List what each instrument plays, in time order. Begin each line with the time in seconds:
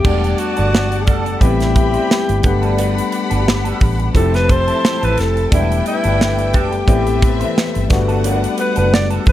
Already playing: alto saxophone G4
0.04 fingered electric bass E1, tine electric piano G3 A3 B3 D4 F#5, clean electric guitar G3 D4 F#4 A4, string machine G3 D5 F#5 A5, string section D5 F#5 A5, kick, crash
0.23 muted clean electric guitar stroke, closed hi-hat
0.38 alto saxophone F#4, muted clean electric guitar stroke, closed hi-hat
0.57 fingered electric bass G1, clean electric guitar G3 D4 F#4 A4, closed hi-hat
0.73 muted clean electric guitar stroke, snare
0.91 muted clean electric guitar stroke, closed hi-hat
1.02 alto saxophone G#4
1.06 fingered electric bass F#1, clean electric guitar G3 D4 F#4 A4, alto saxophone A4, kick, closed hi-hat
1.25 muted clean electric guitar stroke, closed hi-hat
1.41 fingered electric bass A1, tine electric piano G3 A3 B3 C4 E4, clean electric guitar G3 C4 E4 B4, string section G4 E5 B5, alto saxophone G4, string machine B4 B5, kick, closed hi-hat
1.60 snare, closed hi-hat
1.75 muted clean electric guitar stroke, kick, closed hi-hat
1.94 clean electric guitar G3 C4 E4 C5, closed hi-hat
2.09 muted clean electric guitar stroke, snare
2.28 fingered electric bass G1, muted clean electric guitar stroke, closed hi-hat
2.42 fingered electric bass G1, tine electric piano F#3 A3 B3 D4 F#5, string section G4 F#5 B5, string machine F#5 A5 D6, kick, closed hi-hat
2.49 tine electric piano G3
2.62 clean electric guitar G3 D4 F#4 A4, closed hi-hat
2.78 clean electric guitar G3 D4 F#4 B4, closed hi-hat
2.97 muted clean electric guitar stroke, closed hi-hat
3.12 muted clean electric guitar stroke, closed hi-hat
3.30 fingered electric bass G1, clean electric guitar G3 D4 F#4 A4, closed hi-hat
3.46 muted clean electric guitar stroke, snare
3.64 clean electric guitar G3 D4 F#4 A4, closed hi-hat
3.81 fingered electric bass A1, muted clean electric guitar stroke, kick, open hi-hat
3.99 muted clean electric guitar stroke, closed hi-hat
4.14 fingered electric bass F1, tine electric piano F3 A3 C4 E4 G4, clean electric guitar G3 C4 E4 A4, string section E4 C5 A5, string machine A4 G5 E6, alto saxophone A4, kick, closed hi-hat
4.34 alto saxophone B4, snare, closed hi-hat
4.49 alto saxophone C5, muted clean electric guitar stroke, kick, closed hi-hat
4.67 clean electric guitar G3 C4 E4 A4, closed hi-hat
4.83 muted clean electric guitar stroke, snare
5.01 fingered electric bass A1, clean electric guitar G3 C4 E4 A4, alto saxophone B4, closed hi-hat
5.17 fingered electric bass F1, alto saxophone A4, muted clean electric guitar stroke, snare, closed hi-hat
5.36 muted clean electric guitar stroke, closed hi-hat
5.50 fingered electric bass E1, tine electric piano G3 A3 B3 D4 G4, clean electric guitar G3 D4 F#4 A4, string section D4 B4 G5, alto saxophone E4, string machine A4 E5 D6, kick, closed hi-hat
5.70 muted clean electric guitar stroke, closed hi-hat
5.86 alto saxophone E4, muted clean electric guitar stroke, closed hi-hat
6.04 fingered electric bass G1, clean electric guitar G3 D4 F#4 A4, closed hi-hat
6.20 muted clean electric guitar stroke, snare
6.38 muted clean electric guitar stroke, closed hi-hat
6.53 fingered electric bass F#1, clean electric guitar G3 D4 F#4 A4, alto saxophone G4, kick, closed hi-hat
6.72 muted clean electric guitar stroke, closed hi-hat
6.87 fingered electric bass A1, tine electric piano E3 A3 B3 C4 G4, clean electric guitar G3 C4 E4 B4, string section C4 B4 E5, string machine A4 A5, kick, closed hi-hat
7.07 closed hi-hat
7.22 muted clean electric guitar stroke, kick, closed hi-hat
7.40 clean electric guitar G3 C4 E4 C5, closed hi-hat
7.56 muted clean electric guitar stroke, snare
7.74 fingered electric bass G1, muted clean electric guitar stroke, closed hi-hat
7.89 fingered electric bass G1, tine electric piano G3 A3 B3 D4, string machine G3 F#5 A5 D6, string section D4 B4 F#5, kick, snare, closed hi-hat
7.93 tine electric piano F#4
8.08 clean electric guitar G3 D4 F#4 A4, closed hi-hat
8.24 clean electric guitar G3 D4 F#4 B4, closed hi-hat
8.43 muted clean electric guitar stroke, closed hi-hat
8.58 alto saxophone B4, muted clean electric guitar stroke, closed hi-hat
8.76 fingered electric bass F#1, clean electric guitar G3 D4 F#4 A4, alto saxophone B4, closed hi-hat
8.92 alto saxophone D5, muted clean electric guitar stroke, snare
9.10 clean electric guitar G3 D4 F#4 A4, closed hi-hat
9.26 fingered electric bass A1, alto saxophone B4, muted clean electric guitar stroke, kick, open hi-hat